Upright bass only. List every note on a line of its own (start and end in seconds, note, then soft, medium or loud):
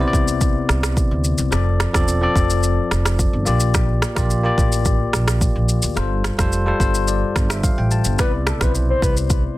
0.13 0.55 C2 medium
0.69 1.01 C2 medium
1.11 1.32 D2 medium
1.39 1.49 C2 medium
1.52 1.84 F1 loud
1.95 2.25 E1 medium
2.36 2.77 F1 medium
2.91 3.23 F1 medium
3.33 3.43 G1 medium
3.47 3.99 A#1 loud
4.17 4.48 A#1 medium
4.58 4.99 A1 loud
5.13 5.45 A#1 medium
5.56 5.76 A#1 medium
5.83 5.93 D2 medium
5.97 6.28 G1 loud
6.39 6.70 F1 medium
6.80 7.22 G1 medium
7.36 7.67 G1 medium
7.78 7.99 A1 medium
8.06 8.16 G1 medium
8.19 8.51 C2 loud
8.61 8.92 B1 medium
9.02 9.44 C2 loud